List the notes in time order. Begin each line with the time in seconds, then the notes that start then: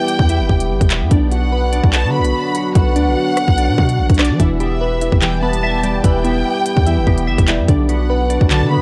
Already playing: E3 G3 B3 E4 G4 B4 G5
0.08 closed hi-hat
0.19 E2, kick
0.29 E4, closed hi-hat
0.40 F#1
0.49 E1 G4, kick
0.60 closed hi-hat
0.70 G1
0.81 E1, kick, closed hi-hat
0.90 E4, clap, closed hi-hat
1.01 G2
1.11 B1 D3 F#3 D4 F#4, kick, closed hi-hat
1.31 F#4 F#5, closed hi-hat
1.52 B4
1.72 D4, closed hi-hat
1.84 B1, kick
1.93 F#4 A5, clap, closed hi-hat
2.04 D3
2.14 B4 B5
2.19 B1
2.25 closed hi-hat
2.55 F#4, closed hi-hat
2.75 B1 B4 F#5, kick, closed hi-hat
2.96 D2 D4, closed hi-hat
3.07 B1
3.17 F#4
3.37 cross-stick, closed hi-hat
3.48 B1, kick
3.58 D4, closed hi-hat
3.68 B2
3.78 B2 F#4, kick
3.89 closed hi-hat
3.99 A1
4.10 B1, kick, closed hi-hat
4.14 closed hi-hat
4.19 D4 D5, cross-stick, clap, closed hi-hat
4.25 closed hi-hat
4.30 F#3
4.40 E1 E3 G3 B3 E4 G4, kick, closed hi-hat
4.60 B3 G4 E5, closed hi-hat
4.81 B4
5.01 E4, closed hi-hat
5.12 E1, kick
5.22 E3 G4 G5, clap, closed hi-hat
5.42 B3 B4 A5
5.53 closed hi-hat
5.63 E5
5.83 G3 G4, closed hi-hat
6.04 E1 E3 B4 G5, kick, closed hi-hat
6.24 B3 E4, closed hi-hat
6.45 G4
6.66 closed hi-hat
6.77 E2, kick
6.86 E3 E4, closed hi-hat
6.97 F#1
7.07 E1 B3 G4, kick
7.18 closed hi-hat
7.27 G1 E5
7.38 E1, kick, closed hi-hat
7.48 G3 E4, clap, closed hi-hat
7.59 G2
7.68 B1 D3 F#3 D4 F#4, kick, closed hi-hat
7.89 B3 F#4 F#5, closed hi-hat
8.10 B4
8.30 D4, closed hi-hat
8.41 B1, kick
8.51 D3 F#4 A5, clap, closed hi-hat
8.62 D3
8.71 B3 B4 B5
8.77 B1